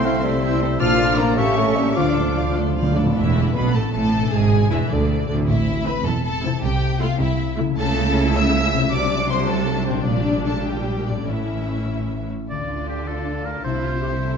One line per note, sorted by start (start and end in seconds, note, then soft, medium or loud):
0.00 0.80 C2 medium
0.00 0.82 C3 medium
0.00 0.24 A3 soft
0.00 0.26 A3 medium
0.00 0.59 C4 medium
0.00 0.60 C4 medium
0.00 0.23 E4 soft
0.00 0.61 E4 soft
0.00 0.42 A4 soft
0.00 0.59 C6 medium
0.00 0.60 C6 medium
0.05 0.21 C4 medium
0.05 0.82 C4 soft
0.05 0.24 E4 medium
0.05 0.23 C5 soft
0.05 0.24 E5 soft
0.05 0.26 F5 medium
0.23 0.79 G3 medium
0.23 0.42 A3 medium
0.23 2.55 A3 soft
0.23 0.41 C4 medium
0.23 0.81 E4 medium
0.23 0.43 A4 medium
0.23 0.42 C5 medium
0.23 0.79 E5 medium
0.42 0.60 C4 soft
0.42 0.60 E4 medium
0.42 1.18 A4 medium
0.42 0.60 C5 medium
0.42 0.61 E5 medium
0.61 0.80 A3 soft
0.61 0.80 C4 medium
0.61 0.82 E4 soft
0.61 0.80 A4 medium
0.61 0.80 C5 medium
0.79 1.36 A#1 medium
0.79 1.39 A#2 medium
0.79 1.38 F3 medium
0.79 0.98 A#3 medium
0.79 1.39 D4 medium
0.79 1.15 F4 medium
0.79 0.98 F4 medium
0.79 1.16 F4 medium
0.79 0.98 A4 medium
0.79 1.39 D5 medium
0.79 0.99 D5 medium
0.79 1.19 F6 medium
0.79 1.15 F6 loud
0.99 1.18 A3 medium
0.99 1.76 A#3 medium
0.99 1.18 D4 medium
0.99 1.18 A#4 medium
0.99 1.18 F5 medium
1.17 1.36 A#3 medium
1.17 1.37 A#3 medium
1.17 1.39 D4 soft
1.17 1.37 F4 medium
1.17 1.36 A4 medium
1.17 1.76 A4 medium
1.17 1.38 D5 medium
1.17 1.36 A#5 medium
1.17 1.38 A#5 medium
1.36 1.96 A1 medium
1.36 1.98 A2 medium
1.36 1.56 A#3 medium
1.36 1.96 C#4 medium
1.36 1.95 C#4 medium
1.36 1.55 G4 medium
1.36 1.55 A4 medium
1.36 1.55 E5 medium
1.36 1.98 E5 medium
1.36 1.95 C#6 medium
1.57 1.98 G3 soft
1.57 1.78 A3 medium
1.57 1.77 A3 medium
1.57 1.77 A4 medium
1.57 1.76 A#4 medium
1.57 1.76 C#5 medium
1.76 1.98 G3 medium
1.76 1.96 A#3 soft
1.76 1.98 A#3 soft
1.76 1.96 G4 soft
1.76 1.96 A4 medium
1.76 2.16 A4 soft
1.76 1.96 E5 medium
1.96 2.94 D2 medium
1.96 2.03 D3 soft
1.96 3.18 D3 medium
1.96 2.15 F3 soft
1.96 2.96 F3 medium
1.96 2.55 D4 medium
1.96 2.57 D4 medium
1.96 2.94 F4 soft
1.96 2.15 F4 soft
1.96 2.15 D5 medium
1.96 2.86 F5 medium
1.96 2.15 F5 medium
1.96 2.55 D6 medium
1.96 2.56 D6 medium
2.04 2.11 D3 soft
2.12 2.19 D3 soft
2.12 2.36 A4 soft
2.12 2.35 D5 soft
2.17 2.26 D3 soft
2.17 2.37 A3 soft
2.17 2.37 D4 soft
2.17 2.95 A4 soft
2.27 2.34 D3 soft
2.35 2.42 D3 soft
2.35 2.56 F3 soft
2.35 3.18 F3 soft
2.35 2.56 F4 soft
2.35 2.55 D5 soft
2.35 2.56 F5 soft
2.43 2.50 D3 soft
2.51 2.58 D3 soft
2.56 2.66 D3 medium
2.56 3.02 A3 soft
2.56 2.77 A3 soft
2.56 2.76 D4 soft
2.56 2.76 A4 soft
2.56 2.75 D5 soft
2.67 2.74 D3 medium
2.75 2.81 D3 medium
2.75 2.95 F3 soft
2.75 2.95 F4 soft
2.75 3.18 F4 soft
2.75 2.94 D5 soft
2.75 2.94 F5 soft
2.83 2.89 D3 medium
2.91 2.97 D3 medium
2.95 4.25 A2 medium
2.95 3.05 D3 medium
2.95 3.16 A3 soft
2.95 3.03 D4 medium
2.95 3.16 D4 soft
2.95 3.16 A4 soft
2.95 3.11 A4 soft
2.95 3.03 D5 medium
2.95 3.16 D5 soft
3.03 3.13 D3 medium
3.03 4.27 A3 soft
3.08 4.30 C4 soft
3.12 3.52 E1 medium
3.12 3.52 E2 medium
3.12 3.54 E4 medium
3.12 4.32 A4 soft
3.16 3.52 E3 medium
3.16 3.55 E5 medium
3.54 3.74 B1 medium
3.54 3.74 B2 medium
3.54 3.74 B3 medium
3.54 3.74 B4 medium
3.54 3.74 B5 medium
3.74 3.82 A1 medium
3.74 3.82 A2 medium
3.74 3.92 A3 medium
3.74 3.92 A4 medium
3.74 3.92 A5 medium
3.93 4.31 A1 medium
3.93 4.31 A2 medium
3.93 4.31 A3 medium
3.93 4.31 A4 medium
3.93 4.31 A5 medium
4.14 5.40 B2 soft
4.18 5.43 D4 soft
4.23 5.38 E4 soft
4.28 4.71 G#4 medium
4.28 5.43 E5 soft
4.32 4.70 G#1 medium
4.32 4.70 G#2 medium
4.32 4.71 G#3 medium
4.32 4.71 G#5 medium
4.70 4.79 E1 medium
4.70 4.79 E2 medium
4.70 4.90 E3 medium
4.70 4.78 E4 medium
4.70 4.90 E5 medium
4.90 5.27 D2 medium
4.90 5.28 D2 medium
4.90 5.28 D3 medium
4.90 5.27 D4 medium
4.90 5.27 D5 medium
5.28 5.47 D2 medium
5.28 5.48 D2 medium
5.28 6.55 A2 medium
5.28 5.37 D3 medium
5.28 5.47 D4 medium
5.28 5.36 D5 medium
5.35 7.72 C4 soft
5.39 6.53 E4 soft
5.44 5.93 A1 medium
5.44 6.02 A2 medium
5.44 5.86 E4 medium
5.44 6.57 E5 soft
5.44 5.86 E5 medium
5.49 5.94 A2 medium
5.86 6.00 C4 medium
5.86 6.00 E4 medium
5.86 6.05 B4 medium
5.86 6.05 B5 loud
6.05 6.51 E1 medium
6.05 6.51 E2 medium
6.05 6.23 A4 medium
6.05 6.23 A5 medium
6.24 6.62 A4 medium
6.24 6.62 A5 medium
6.44 7.70 C3 medium
6.44 6.58 C4 medium
6.44 6.58 E4 medium
6.50 7.63 A3 soft
6.54 7.68 E4 medium
6.58 7.72 E5 medium
6.63 7.08 C2 medium
6.63 7.08 C3 medium
6.63 7.00 G4 medium
6.63 7.00 G5 loud
7.00 7.15 A3 medium
7.00 7.15 E4 medium
7.00 7.19 F4 medium
7.00 7.20 F5 medium
7.19 7.66 C2 medium
7.19 7.65 C3 medium
7.19 7.57 E4 medium
7.19 7.57 E5 medium
7.58 8.84 C#3 medium
7.58 7.72 A3 medium
7.58 7.72 E4 medium
7.64 8.77 A3 medium
7.69 8.88 E4 soft
7.73 8.87 C#2 medium
7.73 8.91 E5 medium
7.77 8.87 C#3 medium
7.77 8.87 A3 medium
7.77 8.87 E4 medium
7.77 8.30 A4 loud
7.77 8.30 A5 loud
8.34 8.91 E5 medium
8.34 8.91 E6 loud
8.73 9.98 C3 medium
8.78 10.01 A3 medium
8.82 10.03 F#4 medium
8.87 10.00 D5 soft
8.87 9.29 D5 loud
8.91 10.06 C2 medium
8.91 10.06 C3 medium
8.91 10.02 F#3 medium
8.91 11.23 D4 medium
8.91 9.28 D6 loud
9.29 9.48 C5 medium
9.29 9.48 C6 medium
9.47 9.86 A4 medium
9.47 9.86 A5 medium
9.86 11.20 A#2 medium
9.86 10.05 C4 medium
9.86 10.06 C5 medium
9.93 11.22 D4 soft
9.97 11.24 G4 soft
10.02 11.23 G3 medium
10.02 10.44 D4 medium
10.02 11.27 D5 soft
10.06 11.25 A#1 medium
10.06 11.25 A#2 medium
10.06 10.45 D5 medium
10.45 10.66 A4 medium
10.45 10.65 A5 medium
10.65 11.05 G4 medium
10.65 11.07 G5 medium
11.06 12.43 A2 soft
11.06 11.27 D4 medium
11.06 11.28 D5 medium
11.14 12.46 C#4 soft
11.18 12.48 E4 soft
11.23 12.26 C#4 soft
11.23 12.30 E4 medium
11.23 14.37 A4 soft
11.27 12.28 A1 medium
11.27 12.29 A2 soft
11.27 12.26 E3 soft
11.27 12.31 E5 medium
12.50 13.60 D2 soft
12.50 13.61 D3 soft
12.50 13.66 D3 soft
12.50 13.61 D4 soft
12.50 13.61 F4 soft
12.50 12.86 D5 medium
12.50 13.61 D5 soft
12.50 14.37 A5 soft
12.70 13.45 D4 soft
12.89 13.26 A3 soft
12.89 13.09 G4 soft
13.08 13.66 F4 soft
13.08 13.46 A4 soft
13.27 14.02 A3 soft
13.45 13.66 D4 soft
13.45 13.64 A#4 medium
13.64 14.37 C2 soft
13.64 14.37 C3 soft
13.64 13.83 E4 soft
13.64 14.37 E4 soft
13.64 14.37 C5 medium
13.64 14.37 E5 soft
13.84 14.37 C4 soft
13.84 14.02 F4 soft
14.02 14.37 A3 soft
14.02 14.09 G4 soft
14.21 14.37 E4 soft
14.21 14.37 A4 medium